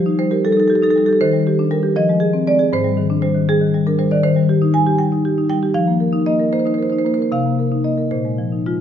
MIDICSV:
0, 0, Header, 1, 2, 480
1, 0, Start_track
1, 0, Tempo, 508044
1, 1135, Time_signature, 6, 3, 24, 8
1, 6402, Tempo, 538600
1, 8212, End_track
2, 0, Start_track
2, 0, Title_t, "Marimba"
2, 0, Program_c, 0, 12
2, 0, Note_on_c, 0, 53, 78
2, 0, Note_on_c, 0, 67, 64
2, 0, Note_on_c, 0, 72, 97
2, 56, Note_on_c, 0, 63, 60
2, 118, Note_off_c, 0, 67, 0
2, 153, Note_off_c, 0, 72, 0
2, 174, Note_on_c, 0, 55, 54
2, 178, Note_on_c, 0, 72, 81
2, 244, Note_off_c, 0, 63, 0
2, 293, Note_off_c, 0, 72, 0
2, 293, Note_on_c, 0, 70, 65
2, 294, Note_on_c, 0, 67, 60
2, 363, Note_off_c, 0, 55, 0
2, 411, Note_off_c, 0, 70, 0
2, 421, Note_on_c, 0, 55, 59
2, 422, Note_on_c, 0, 69, 85
2, 483, Note_off_c, 0, 67, 0
2, 495, Note_off_c, 0, 69, 0
2, 495, Note_on_c, 0, 69, 69
2, 539, Note_on_c, 0, 63, 56
2, 563, Note_off_c, 0, 69, 0
2, 563, Note_on_c, 0, 69, 71
2, 607, Note_off_c, 0, 55, 0
2, 640, Note_off_c, 0, 69, 0
2, 640, Note_on_c, 0, 69, 66
2, 659, Note_on_c, 0, 67, 61
2, 713, Note_off_c, 0, 69, 0
2, 713, Note_on_c, 0, 69, 71
2, 727, Note_off_c, 0, 63, 0
2, 778, Note_on_c, 0, 63, 57
2, 787, Note_off_c, 0, 69, 0
2, 787, Note_on_c, 0, 69, 66
2, 848, Note_off_c, 0, 67, 0
2, 855, Note_off_c, 0, 69, 0
2, 855, Note_on_c, 0, 69, 73
2, 906, Note_on_c, 0, 55, 61
2, 923, Note_off_c, 0, 69, 0
2, 923, Note_on_c, 0, 69, 67
2, 968, Note_off_c, 0, 63, 0
2, 1003, Note_off_c, 0, 69, 0
2, 1003, Note_on_c, 0, 69, 74
2, 1023, Note_on_c, 0, 67, 57
2, 1064, Note_off_c, 0, 69, 0
2, 1064, Note_on_c, 0, 69, 70
2, 1093, Note_off_c, 0, 55, 0
2, 1103, Note_off_c, 0, 53, 0
2, 1113, Note_off_c, 0, 69, 0
2, 1139, Note_off_c, 0, 67, 0
2, 1142, Note_on_c, 0, 72, 106
2, 1147, Note_on_c, 0, 51, 76
2, 1260, Note_on_c, 0, 55, 57
2, 1388, Note_on_c, 0, 67, 65
2, 1450, Note_off_c, 0, 55, 0
2, 1504, Note_on_c, 0, 62, 59
2, 1574, Note_off_c, 0, 67, 0
2, 1600, Note_off_c, 0, 72, 0
2, 1615, Note_on_c, 0, 55, 56
2, 1615, Note_on_c, 0, 70, 73
2, 1691, Note_off_c, 0, 62, 0
2, 1728, Note_on_c, 0, 67, 60
2, 1806, Note_off_c, 0, 55, 0
2, 1839, Note_off_c, 0, 51, 0
2, 1844, Note_off_c, 0, 70, 0
2, 1850, Note_off_c, 0, 67, 0
2, 1852, Note_on_c, 0, 53, 73
2, 1856, Note_on_c, 0, 75, 98
2, 1978, Note_on_c, 0, 56, 55
2, 2080, Note_on_c, 0, 68, 65
2, 2167, Note_off_c, 0, 56, 0
2, 2205, Note_on_c, 0, 60, 56
2, 2278, Note_off_c, 0, 68, 0
2, 2315, Note_off_c, 0, 75, 0
2, 2337, Note_on_c, 0, 56, 58
2, 2338, Note_on_c, 0, 74, 97
2, 2401, Note_off_c, 0, 60, 0
2, 2448, Note_on_c, 0, 68, 65
2, 2527, Note_off_c, 0, 56, 0
2, 2550, Note_off_c, 0, 53, 0
2, 2566, Note_off_c, 0, 74, 0
2, 2571, Note_off_c, 0, 68, 0
2, 2576, Note_on_c, 0, 44, 80
2, 2582, Note_on_c, 0, 72, 104
2, 2687, Note_on_c, 0, 55, 58
2, 2806, Note_on_c, 0, 51, 64
2, 2883, Note_off_c, 0, 55, 0
2, 2928, Note_on_c, 0, 62, 60
2, 3003, Note_off_c, 0, 51, 0
2, 3032, Note_off_c, 0, 72, 0
2, 3044, Note_on_c, 0, 72, 90
2, 3045, Note_on_c, 0, 55, 55
2, 3125, Note_off_c, 0, 62, 0
2, 3161, Note_on_c, 0, 51, 57
2, 3244, Note_off_c, 0, 55, 0
2, 3282, Note_off_c, 0, 72, 0
2, 3296, Note_on_c, 0, 68, 90
2, 3298, Note_on_c, 0, 55, 61
2, 3363, Note_off_c, 0, 51, 0
2, 3411, Note_on_c, 0, 51, 61
2, 3491, Note_off_c, 0, 55, 0
2, 3538, Note_on_c, 0, 55, 60
2, 3607, Note_off_c, 0, 51, 0
2, 3643, Note_off_c, 0, 68, 0
2, 3654, Note_on_c, 0, 62, 59
2, 3655, Note_on_c, 0, 70, 68
2, 3729, Note_off_c, 0, 55, 0
2, 3767, Note_on_c, 0, 72, 71
2, 3768, Note_on_c, 0, 55, 61
2, 3775, Note_off_c, 0, 70, 0
2, 3846, Note_off_c, 0, 62, 0
2, 3886, Note_on_c, 0, 74, 72
2, 3890, Note_off_c, 0, 72, 0
2, 3890, Note_on_c, 0, 51, 61
2, 3961, Note_off_c, 0, 55, 0
2, 3977, Note_off_c, 0, 44, 0
2, 3990, Note_off_c, 0, 51, 0
2, 4000, Note_on_c, 0, 72, 103
2, 4001, Note_on_c, 0, 51, 80
2, 4008, Note_off_c, 0, 74, 0
2, 4121, Note_on_c, 0, 55, 55
2, 4244, Note_on_c, 0, 67, 63
2, 4317, Note_off_c, 0, 55, 0
2, 4362, Note_on_c, 0, 63, 62
2, 4439, Note_off_c, 0, 67, 0
2, 4464, Note_off_c, 0, 72, 0
2, 4477, Note_on_c, 0, 55, 59
2, 4477, Note_on_c, 0, 80, 88
2, 4559, Note_off_c, 0, 63, 0
2, 4597, Note_on_c, 0, 67, 59
2, 4676, Note_off_c, 0, 55, 0
2, 4709, Note_on_c, 0, 55, 53
2, 4710, Note_on_c, 0, 79, 79
2, 4715, Note_off_c, 0, 80, 0
2, 4796, Note_off_c, 0, 67, 0
2, 4838, Note_on_c, 0, 63, 55
2, 4911, Note_off_c, 0, 55, 0
2, 4961, Note_on_c, 0, 67, 58
2, 5034, Note_off_c, 0, 63, 0
2, 5082, Note_on_c, 0, 63, 57
2, 5154, Note_off_c, 0, 67, 0
2, 5175, Note_off_c, 0, 79, 0
2, 5192, Note_on_c, 0, 79, 95
2, 5195, Note_on_c, 0, 55, 54
2, 5273, Note_off_c, 0, 63, 0
2, 5317, Note_on_c, 0, 67, 58
2, 5389, Note_off_c, 0, 55, 0
2, 5398, Note_off_c, 0, 51, 0
2, 5425, Note_off_c, 0, 79, 0
2, 5426, Note_on_c, 0, 53, 72
2, 5427, Note_on_c, 0, 77, 96
2, 5438, Note_off_c, 0, 67, 0
2, 5550, Note_on_c, 0, 58, 49
2, 5671, Note_on_c, 0, 70, 58
2, 5746, Note_off_c, 0, 58, 0
2, 5788, Note_on_c, 0, 63, 58
2, 5867, Note_off_c, 0, 70, 0
2, 5894, Note_off_c, 0, 77, 0
2, 5918, Note_on_c, 0, 75, 85
2, 5920, Note_on_c, 0, 58, 54
2, 5987, Note_off_c, 0, 63, 0
2, 6042, Note_on_c, 0, 70, 54
2, 6114, Note_off_c, 0, 58, 0
2, 6151, Note_off_c, 0, 75, 0
2, 6165, Note_on_c, 0, 58, 54
2, 6167, Note_on_c, 0, 72, 82
2, 6231, Note_off_c, 0, 72, 0
2, 6231, Note_on_c, 0, 72, 64
2, 6236, Note_off_c, 0, 70, 0
2, 6285, Note_on_c, 0, 63, 51
2, 6300, Note_off_c, 0, 72, 0
2, 6300, Note_on_c, 0, 72, 68
2, 6357, Note_off_c, 0, 58, 0
2, 6369, Note_off_c, 0, 72, 0
2, 6369, Note_on_c, 0, 72, 68
2, 6408, Note_on_c, 0, 70, 53
2, 6446, Note_off_c, 0, 72, 0
2, 6446, Note_on_c, 0, 72, 67
2, 6475, Note_off_c, 0, 63, 0
2, 6510, Note_off_c, 0, 72, 0
2, 6510, Note_on_c, 0, 72, 65
2, 6532, Note_on_c, 0, 63, 53
2, 6588, Note_off_c, 0, 72, 0
2, 6588, Note_on_c, 0, 72, 69
2, 6591, Note_off_c, 0, 70, 0
2, 6644, Note_on_c, 0, 58, 52
2, 6657, Note_off_c, 0, 72, 0
2, 6657, Note_on_c, 0, 72, 65
2, 6713, Note_off_c, 0, 63, 0
2, 6726, Note_off_c, 0, 72, 0
2, 6726, Note_on_c, 0, 72, 74
2, 6759, Note_on_c, 0, 70, 50
2, 6798, Note_off_c, 0, 72, 0
2, 6798, Note_on_c, 0, 72, 64
2, 6828, Note_off_c, 0, 53, 0
2, 6828, Note_off_c, 0, 58, 0
2, 6845, Note_off_c, 0, 72, 0
2, 6874, Note_off_c, 0, 70, 0
2, 6884, Note_on_c, 0, 48, 72
2, 6888, Note_on_c, 0, 77, 84
2, 7009, Note_on_c, 0, 58, 44
2, 7127, Note_on_c, 0, 70, 53
2, 7187, Note_off_c, 0, 58, 0
2, 7241, Note_on_c, 0, 63, 52
2, 7306, Note_off_c, 0, 70, 0
2, 7333, Note_off_c, 0, 77, 0
2, 7354, Note_on_c, 0, 58, 44
2, 7354, Note_on_c, 0, 75, 69
2, 7423, Note_off_c, 0, 63, 0
2, 7471, Note_on_c, 0, 70, 46
2, 7541, Note_off_c, 0, 58, 0
2, 7570, Note_off_c, 0, 48, 0
2, 7580, Note_off_c, 0, 75, 0
2, 7588, Note_off_c, 0, 70, 0
2, 7592, Note_on_c, 0, 72, 71
2, 7594, Note_on_c, 0, 46, 57
2, 7715, Note_on_c, 0, 56, 46
2, 7834, Note_on_c, 0, 53, 45
2, 7907, Note_off_c, 0, 56, 0
2, 7958, Note_on_c, 0, 63, 44
2, 8030, Note_off_c, 0, 53, 0
2, 8062, Note_off_c, 0, 72, 0
2, 8084, Note_on_c, 0, 65, 67
2, 8086, Note_on_c, 0, 56, 47
2, 8156, Note_off_c, 0, 63, 0
2, 8207, Note_off_c, 0, 65, 0
2, 8212, Note_off_c, 0, 46, 0
2, 8212, Note_off_c, 0, 56, 0
2, 8212, End_track
0, 0, End_of_file